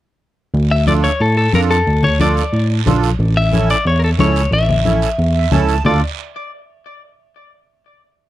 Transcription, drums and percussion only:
0, 0, Header, 1, 2, 480
1, 0, Start_track
1, 0, Key_signature, -1, "minor"
1, 0, Tempo, 332226
1, 786, Time_signature, 4, 2, 24, 8
1, 11982, End_track
2, 0, Start_track
2, 0, Title_t, "Drums"
2, 779, Note_on_c, 9, 63, 30
2, 786, Note_on_c, 9, 74, 67
2, 924, Note_off_c, 9, 63, 0
2, 931, Note_off_c, 9, 74, 0
2, 1254, Note_on_c, 9, 63, 76
2, 1265, Note_on_c, 9, 73, 65
2, 1399, Note_off_c, 9, 63, 0
2, 1410, Note_off_c, 9, 73, 0
2, 1503, Note_on_c, 9, 73, 66
2, 1648, Note_off_c, 9, 73, 0
2, 1737, Note_on_c, 9, 63, 35
2, 1744, Note_on_c, 9, 74, 60
2, 1882, Note_off_c, 9, 63, 0
2, 1889, Note_off_c, 9, 74, 0
2, 2214, Note_on_c, 9, 63, 74
2, 2224, Note_on_c, 9, 73, 59
2, 2358, Note_off_c, 9, 63, 0
2, 2369, Note_off_c, 9, 73, 0
2, 2465, Note_on_c, 9, 73, 70
2, 2610, Note_off_c, 9, 73, 0
2, 2704, Note_on_c, 9, 63, 32
2, 2707, Note_on_c, 9, 74, 65
2, 2848, Note_off_c, 9, 63, 0
2, 2851, Note_off_c, 9, 74, 0
2, 2930, Note_on_c, 9, 64, 69
2, 3075, Note_off_c, 9, 64, 0
2, 3176, Note_on_c, 9, 63, 70
2, 3187, Note_on_c, 9, 73, 72
2, 3321, Note_off_c, 9, 63, 0
2, 3332, Note_off_c, 9, 73, 0
2, 3426, Note_on_c, 9, 73, 75
2, 3571, Note_off_c, 9, 73, 0
2, 3660, Note_on_c, 9, 63, 34
2, 3665, Note_on_c, 9, 74, 66
2, 3804, Note_off_c, 9, 63, 0
2, 3810, Note_off_c, 9, 74, 0
2, 4145, Note_on_c, 9, 63, 80
2, 4145, Note_on_c, 9, 64, 78
2, 4148, Note_on_c, 9, 73, 66
2, 4289, Note_off_c, 9, 63, 0
2, 4289, Note_off_c, 9, 64, 0
2, 4292, Note_off_c, 9, 73, 0
2, 4383, Note_on_c, 9, 73, 71
2, 4527, Note_off_c, 9, 73, 0
2, 4615, Note_on_c, 9, 63, 32
2, 4625, Note_on_c, 9, 74, 67
2, 4760, Note_off_c, 9, 63, 0
2, 4769, Note_off_c, 9, 74, 0
2, 5093, Note_on_c, 9, 63, 71
2, 5105, Note_on_c, 9, 73, 71
2, 5238, Note_off_c, 9, 63, 0
2, 5250, Note_off_c, 9, 73, 0
2, 5344, Note_on_c, 9, 73, 78
2, 5489, Note_off_c, 9, 73, 0
2, 5584, Note_on_c, 9, 63, 33
2, 5586, Note_on_c, 9, 74, 66
2, 5729, Note_off_c, 9, 63, 0
2, 5730, Note_off_c, 9, 74, 0
2, 6054, Note_on_c, 9, 63, 89
2, 6068, Note_on_c, 9, 73, 64
2, 6199, Note_off_c, 9, 63, 0
2, 6213, Note_off_c, 9, 73, 0
2, 6302, Note_on_c, 9, 73, 71
2, 6446, Note_off_c, 9, 73, 0
2, 6534, Note_on_c, 9, 63, 32
2, 6538, Note_on_c, 9, 74, 64
2, 6679, Note_off_c, 9, 63, 0
2, 6682, Note_off_c, 9, 74, 0
2, 6780, Note_on_c, 9, 64, 63
2, 6924, Note_off_c, 9, 64, 0
2, 7011, Note_on_c, 9, 63, 64
2, 7016, Note_on_c, 9, 73, 69
2, 7155, Note_off_c, 9, 63, 0
2, 7161, Note_off_c, 9, 73, 0
2, 7257, Note_on_c, 9, 73, 71
2, 7401, Note_off_c, 9, 73, 0
2, 7496, Note_on_c, 9, 74, 70
2, 7498, Note_on_c, 9, 63, 35
2, 7641, Note_off_c, 9, 74, 0
2, 7642, Note_off_c, 9, 63, 0
2, 7971, Note_on_c, 9, 63, 80
2, 7971, Note_on_c, 9, 64, 81
2, 7977, Note_on_c, 9, 73, 60
2, 8115, Note_off_c, 9, 63, 0
2, 8115, Note_off_c, 9, 64, 0
2, 8122, Note_off_c, 9, 73, 0
2, 8215, Note_on_c, 9, 73, 65
2, 8359, Note_off_c, 9, 73, 0
2, 8451, Note_on_c, 9, 64, 87
2, 8461, Note_on_c, 9, 74, 94
2, 8596, Note_off_c, 9, 64, 0
2, 8606, Note_off_c, 9, 74, 0
2, 11982, End_track
0, 0, End_of_file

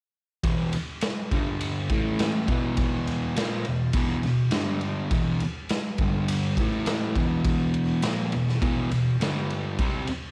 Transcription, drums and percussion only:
0, 0, Header, 1, 2, 480
1, 0, Start_track
1, 0, Key_signature, 1, "minor"
1, 0, Tempo, 584795
1, 360, Time_signature, 4, 2, 24, 8
1, 8464, End_track
2, 0, Start_track
2, 0, Title_t, "Drums"
2, 360, Note_on_c, 9, 36, 102
2, 360, Note_on_c, 9, 51, 91
2, 442, Note_off_c, 9, 36, 0
2, 442, Note_off_c, 9, 51, 0
2, 597, Note_on_c, 9, 51, 76
2, 679, Note_off_c, 9, 51, 0
2, 831, Note_on_c, 9, 51, 95
2, 842, Note_on_c, 9, 38, 99
2, 913, Note_off_c, 9, 51, 0
2, 924, Note_off_c, 9, 38, 0
2, 1079, Note_on_c, 9, 36, 101
2, 1080, Note_on_c, 9, 51, 66
2, 1161, Note_off_c, 9, 36, 0
2, 1162, Note_off_c, 9, 51, 0
2, 1317, Note_on_c, 9, 51, 100
2, 1399, Note_off_c, 9, 51, 0
2, 1555, Note_on_c, 9, 51, 63
2, 1557, Note_on_c, 9, 36, 90
2, 1637, Note_off_c, 9, 51, 0
2, 1639, Note_off_c, 9, 36, 0
2, 1797, Note_on_c, 9, 51, 91
2, 1807, Note_on_c, 9, 38, 98
2, 1879, Note_off_c, 9, 51, 0
2, 1890, Note_off_c, 9, 38, 0
2, 2035, Note_on_c, 9, 36, 97
2, 2036, Note_on_c, 9, 51, 58
2, 2117, Note_off_c, 9, 36, 0
2, 2118, Note_off_c, 9, 51, 0
2, 2271, Note_on_c, 9, 51, 88
2, 2277, Note_on_c, 9, 36, 99
2, 2353, Note_off_c, 9, 51, 0
2, 2359, Note_off_c, 9, 36, 0
2, 2521, Note_on_c, 9, 51, 66
2, 2603, Note_off_c, 9, 51, 0
2, 2759, Note_on_c, 9, 51, 89
2, 2770, Note_on_c, 9, 38, 103
2, 2841, Note_off_c, 9, 51, 0
2, 2852, Note_off_c, 9, 38, 0
2, 2992, Note_on_c, 9, 51, 55
2, 3074, Note_off_c, 9, 51, 0
2, 3226, Note_on_c, 9, 51, 98
2, 3231, Note_on_c, 9, 36, 106
2, 3308, Note_off_c, 9, 51, 0
2, 3313, Note_off_c, 9, 36, 0
2, 3471, Note_on_c, 9, 51, 61
2, 3553, Note_off_c, 9, 51, 0
2, 3700, Note_on_c, 9, 51, 84
2, 3711, Note_on_c, 9, 38, 94
2, 3782, Note_off_c, 9, 51, 0
2, 3793, Note_off_c, 9, 38, 0
2, 3947, Note_on_c, 9, 51, 48
2, 4029, Note_off_c, 9, 51, 0
2, 4191, Note_on_c, 9, 51, 90
2, 4193, Note_on_c, 9, 36, 110
2, 4273, Note_off_c, 9, 51, 0
2, 4275, Note_off_c, 9, 36, 0
2, 4434, Note_on_c, 9, 51, 61
2, 4516, Note_off_c, 9, 51, 0
2, 4672, Note_on_c, 9, 51, 89
2, 4683, Note_on_c, 9, 38, 98
2, 4754, Note_off_c, 9, 51, 0
2, 4765, Note_off_c, 9, 38, 0
2, 4909, Note_on_c, 9, 51, 64
2, 4913, Note_on_c, 9, 36, 102
2, 4991, Note_off_c, 9, 51, 0
2, 4996, Note_off_c, 9, 36, 0
2, 5157, Note_on_c, 9, 51, 104
2, 5239, Note_off_c, 9, 51, 0
2, 5394, Note_on_c, 9, 36, 97
2, 5398, Note_on_c, 9, 51, 69
2, 5476, Note_off_c, 9, 36, 0
2, 5480, Note_off_c, 9, 51, 0
2, 5631, Note_on_c, 9, 51, 88
2, 5642, Note_on_c, 9, 38, 107
2, 5713, Note_off_c, 9, 51, 0
2, 5724, Note_off_c, 9, 38, 0
2, 5874, Note_on_c, 9, 36, 88
2, 5877, Note_on_c, 9, 51, 58
2, 5956, Note_off_c, 9, 36, 0
2, 5959, Note_off_c, 9, 51, 0
2, 6112, Note_on_c, 9, 36, 110
2, 6113, Note_on_c, 9, 51, 93
2, 6194, Note_off_c, 9, 36, 0
2, 6195, Note_off_c, 9, 51, 0
2, 6350, Note_on_c, 9, 51, 72
2, 6432, Note_off_c, 9, 51, 0
2, 6585, Note_on_c, 9, 51, 101
2, 6596, Note_on_c, 9, 38, 121
2, 6667, Note_off_c, 9, 51, 0
2, 6678, Note_off_c, 9, 38, 0
2, 6829, Note_on_c, 9, 51, 64
2, 6911, Note_off_c, 9, 51, 0
2, 6964, Note_on_c, 9, 38, 30
2, 7046, Note_off_c, 9, 38, 0
2, 7073, Note_on_c, 9, 36, 114
2, 7076, Note_on_c, 9, 51, 88
2, 7155, Note_off_c, 9, 36, 0
2, 7158, Note_off_c, 9, 51, 0
2, 7316, Note_on_c, 9, 51, 67
2, 7399, Note_off_c, 9, 51, 0
2, 7559, Note_on_c, 9, 51, 85
2, 7569, Note_on_c, 9, 38, 97
2, 7641, Note_off_c, 9, 51, 0
2, 7651, Note_off_c, 9, 38, 0
2, 7799, Note_on_c, 9, 51, 54
2, 7881, Note_off_c, 9, 51, 0
2, 8032, Note_on_c, 9, 51, 85
2, 8034, Note_on_c, 9, 36, 106
2, 8114, Note_off_c, 9, 51, 0
2, 8116, Note_off_c, 9, 36, 0
2, 8269, Note_on_c, 9, 51, 68
2, 8351, Note_off_c, 9, 51, 0
2, 8464, End_track
0, 0, End_of_file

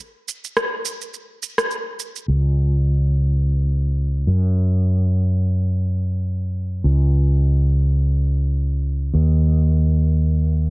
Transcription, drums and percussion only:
0, 0, Header, 1, 2, 480
1, 0, Start_track
1, 0, Tempo, 571429
1, 1913, Time_signature, 4, 2, 24, 8
1, 8988, End_track
2, 0, Start_track
2, 0, Title_t, "Drums"
2, 237, Note_on_c, 9, 82, 73
2, 321, Note_off_c, 9, 82, 0
2, 373, Note_on_c, 9, 82, 40
2, 457, Note_off_c, 9, 82, 0
2, 476, Note_on_c, 9, 37, 79
2, 477, Note_on_c, 9, 82, 34
2, 560, Note_off_c, 9, 37, 0
2, 561, Note_off_c, 9, 82, 0
2, 716, Note_on_c, 9, 82, 78
2, 800, Note_off_c, 9, 82, 0
2, 852, Note_on_c, 9, 82, 43
2, 936, Note_off_c, 9, 82, 0
2, 956, Note_on_c, 9, 82, 31
2, 1040, Note_off_c, 9, 82, 0
2, 1198, Note_on_c, 9, 82, 71
2, 1282, Note_off_c, 9, 82, 0
2, 1328, Note_on_c, 9, 37, 78
2, 1330, Note_on_c, 9, 82, 44
2, 1412, Note_off_c, 9, 37, 0
2, 1414, Note_off_c, 9, 82, 0
2, 1435, Note_on_c, 9, 82, 31
2, 1519, Note_off_c, 9, 82, 0
2, 1676, Note_on_c, 9, 82, 67
2, 1760, Note_off_c, 9, 82, 0
2, 1813, Note_on_c, 9, 82, 42
2, 1897, Note_off_c, 9, 82, 0
2, 8988, End_track
0, 0, End_of_file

